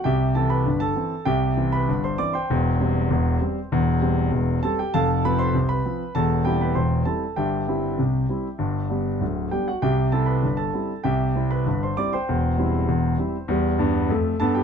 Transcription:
0.04 C2 C3 G4 E5 G5
0.35 E3 C4 A4 A5
0.50 B4 B5
0.66 G1 G2
0.80 A4 A5
0.96 E3 C4
1.25 C2 C3 G4 E5 G5
1.57 E3 C4
1.72 B4 B5
1.88 G1 G2
2.04 C5 C6
2.18 E3 C4 D5 D6
2.33 C5 G5 C6
2.50 E1 E2
2.80 G3 C4
3.10 E1 E2
3.41 G3 C4
3.72 E1 E2
4.00 G3 C4
4.32 E1 E2
4.63 G3 C4 A4 A5
4.79 G4 G5
4.94 F1 F2 A4 F5 A5
5.25 F3 C4 B4 B5
5.39 C5 C6
5.54 C2 C3
5.69 B4 B5
5.86 F3 C4
6.15 E1 E2 A4 A5
6.45 G3 C4 E4 G4 G5
6.61 B4 B5
6.75 E1 E2 C5 G5 C6
7.05 G3 C4 E4 A4 A5
7.36 G1 G2 G4 E5 G5
7.68 G3 C4 E4
7.99 C2 C3
8.29 G3 C4 E4
8.59 G1 G2
8.90 G3 B3 D4
9.21 D1 D2
9.51 G3 B3 D4 G4 G5
9.68 F#4 F#5
9.82 C2 C3 G4 E5 G5
10.12 G3 C4 E4 A4 A5
10.26 B4 B5
10.43 G1 G2
10.57 A4 A5
10.74 G3 C4 E4
11.04 C2 C3 G4 E5 G5
11.35 G3 C4 E4
11.51 B4 B5
11.66 G1 G2
11.83 C5 C6
11.97 G3 C4 E4 D5 D6
12.13 C5 G5 C6
12.29 E1 E2
12.58 G3 C4 E4
12.88 E1 E2
13.18 G3 C4 E4
13.48 E2 G3
13.79 G2 B3
14.09 F2 A3
14.40 G2 B3 A4 A5
14.55 G4 G5

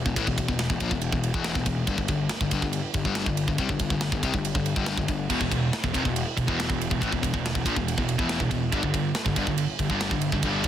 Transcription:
0.06 E1 E2 B2, kick
0.16 A1 A2 E3, kick, ride
0.27 E1 E2 B2, kick
0.38 E1 E2 B2, kick, ride
0.48 E1 E2 B2, kick
0.59 snare, ride
0.70 E1 E2 B2, kick
0.80 A#1 A#2 F3, kick, ride
0.91 E1 E2 B2, kick
1.01 ride
1.12 E1 E2 B2, kick
1.23 ride
1.34 E1 E2 B2 E3, kick
1.44 snare, ride
1.55 E1 E2 B2, kick
1.66 E1 E2 B2, kick, ride
1.87 G1 G2 D3, kick, ride
1.98 G1 G2 D3, kick
2.08 G1 G2 D3, kick, ride
2.29 snare, ride
2.41 G1 G2 D3, kick
2.51 G1 G2 D3, kick, ride
2.62 G1 G2 D3, kick
2.73 ride
2.94 G1 G2 D3, kick, ride
3.05 G1 G2 D3 G3, kick
3.15 snare, ride
3.26 G1 G2 D3, kick
3.37 ride
3.48 G1 G2 D3, kick
3.58 C2 C3 G3, kick, ride
3.69 G1 G2 D3, kick
3.79 G1 G2 D3, kick, ride
3.90 G1 G2 D3, kick
4.01 snare, ride
4.12 G1 G2 D3, kick
4.23 C2 C3 G3, kick, ride
4.34 G1 G2 D3, kick
4.45 ride
4.55 G1 G2 D3, kick
4.66 ride
4.76 G1 G2 D3 G3, kick
4.86 snare, ride
4.97 G1 G2 D3, kick
5.08 G1 G2 D3, kick, ride
5.30 E1 E2 B2, kick, crash
5.41 E1 E2 B2, kick
5.51 E1 E2 B2, kick, ride
5.73 snare, ride
5.84 E1 E2 B2, kick
5.94 F1 F2 C3, kick, ride
6.04 E1 E2 B2, kick
6.16 ride
6.37 E1 E2 B2, kick, ride
6.47 E1 E2 B2 E3, kick
6.60 snare, ride
6.69 E1 E2 B2, kick
6.81 ride
6.90 E1 E2 B2, kick
7.01 A1 A2 E3, kick, ride
7.12 E1 E2 B2, kick
7.23 E1 E2 B2, kick, ride
7.33 E1 E2 B2, kick
7.46 snare, ride
7.55 E1 E2 B2, kick
7.65 A#1 A#2 F3, kick, ride
7.76 E1 E2 B2, kick
7.88 ride
7.98 E1 E2 B2, kick
8.09 ride
8.18 E1 E2 B2 E3, kick
8.29 snare, ride
8.40 E1 E2 B2, kick
8.51 E1 E2 B2, kick, ride
8.72 G1 G2 D3, kick, ride
8.83 G1 G2 D3, kick
8.94 G1 G2 D3, kick, ride
9.15 snare, ride
9.26 G1 G2 D3, kick
9.36 G1 G2 D3, kick, ride
9.47 G1 G2 D3, kick
9.58 ride
9.79 G1 G2 D3, kick, ride
9.90 G1 G2 D3 G3, kick
10.01 snare, ride
10.11 G1 G2 D3, kick
10.21 ride
10.32 G1 G2 D3, kick
10.43 G1 G2 D3 G3, kick, ride
10.64 G1 G2, kick, ride

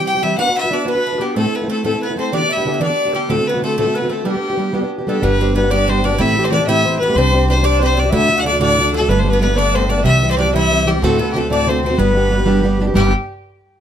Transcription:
Already playing: G4
0.00 G3 C4
0.07 G4 G5
0.15 G3 C4 G4
0.23 E3 G3 C4 E4 G4 E5
0.37 B3 D4 F#4 B4 F#5
0.47 D4 F#4 B4
0.57 E4 E5
0.63 D4 F#4 B4
0.70 B3 D4 F#4 B4 D5
0.85 B3 D4 F#4 B4
0.90 B4
0.95 D4 F#4 B4
1.07 A3
1.13 D4 F#4 B4
1.18 G3 B3 D4 F#4 G4 B4
1.35 A2 A3 C4 E4 A4
1.44 C4 E4 A4
1.55 B3 B4
1.62 C4 E4 A4
1.67 A3 C4 E4 A4
1.83 A2 A3 C4 E4 A4
1.93 C4 E4 A4
2.01 B3 B4
2.09 C4 E4 A4
2.16 A3 C4 E4 A4 C5
2.32 D3 E3 B3 D4 G4 D5
2.41 B3 D4 G4
2.49 E4 E5
2.57 B3 D4 G4
2.65 D3 B3 D4 G4
2.74 E4
2.80 D3 E3 B3 D4 G4 D5
2.89 B3 D4 G4
3.05 B3 D4 G4
3.13 D3 G3 B3 D4 G4
3.28 D2 A2 D3 A3 C4 F#4 A4
3.38 D3 A3 C4 F#4
3.47 B3 B4
3.54 D3 A3 C4 F#4
3.62 D3 A3 C4 F#4 A4
3.77 D2 A2 D3 A3 C4 F#4 A4
3.86 D3 A3 C4 F#4
3.95 B3 B4
4.02 D3 A3 C4 F#4
4.09 D3 A3 C4 F#4 A4
4.25 G3 B3 D4 G4
4.34 B3 D4 G4
4.50 B3 D4 G4
4.57 G3 B3 D4 G4
4.73 G3 B3 D4 G4
4.81 B3 D4 G4
4.98 B3 D4 G4
5.06 G3 A3 B3 D4 G4 A4
5.21 G1 G3 B3 D4 G4 B4
5.39 G3 B3 C4 D4 G4
5.54 G3 B3 D4 G4 B4
5.63 B3 D4 G4
5.71 G3 B3 D4 G4 D5
5.88 G3 B3 C4 D4 G4 C5
6.04 G3 B3 D4 G4 D5
6.12 B3 D4 G4
6.18 A1 A2 E3 A3 C4 E4 G4 E5
6.36 E3 A3 C4 G4
6.44 C4 C5
6.51 E3 A3 C4 D4 G4 D5
6.59 A3 C4 G4
6.66 A2 E3 A3 C4 E4 G4 E5
6.84 E3 A3 C4 G4 C5
6.99 E3 A3 C4 G4 B4
7.03 B3
7.08 A3 C4 G4
7.14 C2 C4 D4 G4 C5
7.18 C5
7.33 C4 D4 G4 C5
7.47 C4 D4 G4 C5
7.56 D4 G4 C5
7.63 C4 D4 G4 C5 D5
7.80 C4 D4 G4 C5
7.94 C4 D4 G4 C5 D5
7.99 D5
8.04 D4 G4 C5
8.10 D2 A2 D3 A3 D4 E4 F#4 E5
8.14 E5
8.29 D3 A3 D4 F#4
8.36 F#4 F#5
8.42 D3 D4 D5
8.46 A3 F#4 D5
8.52 D3 A3 D4 F#4
8.59 D2 A2 D3 A3 D4 F#4 D5
8.72 D4
8.78 D3 A3 D4 F#4
8.83 D4
8.92 D3 A3 D4 F#4 A4
8.96 F#4 A4
9.01 D3 A3 D4
9.08 G1 G2 D3 G3 A3 B3 D4 B4
9.19 C5
9.24 G3 A3 B3 D4
9.30 B3 B4
9.40 G3 A3 B3 D4 B4
9.48 G3 A3 B3 D4
9.55 G2 D3 G3 A3 B3 D4 D5
9.73 G3 A3 B3 C4 D4 C5
9.88 G3 A3 B3 D4 D5
9.96 G3 A3 B3 D4
10.03 C2 C3 E3 G3 C4 E4 G4 E5
10.21 E3 G3 C4 G4
10.30 C4 C5
10.37 E3 G3 C4 D4 G4 D5
10.46 G3 C4 G4
10.53 C3 E3 G3 C4 E4 G4 E5
10.71 E3 G3 C4 G4
10.86 E3 G3 C4 G4
10.94 G3 C4 G4
11.02 D2 A2 D3 A3 C4 F#4 A4
11.19 D3 A3 B3 F#4
11.32 D3 C4 G4
11.36 A3 F#4 A4
11.42 D3 A3 C4 F#4
11.49 D2 A2 D3 A3 C4 D4 F#4 D5
11.67 D3 A3 C4 F#4 C5
11.83 D3 A3 C4 F#4 C5
11.90 D3 A3 C4 F#4
11.98 G1 G3 B3 D4 G4 B4
12.15 G3 B3 D4 G4
12.30 G3 B3 D4 G4
12.38 B3 D4 G4
12.46 G3 B3 D4 G4
12.63 G3 B3 D4 G4
12.80 G3 B3 D4 G4
12.87 B3 D4 G4
12.94 G1 G3 B3 D4 G4

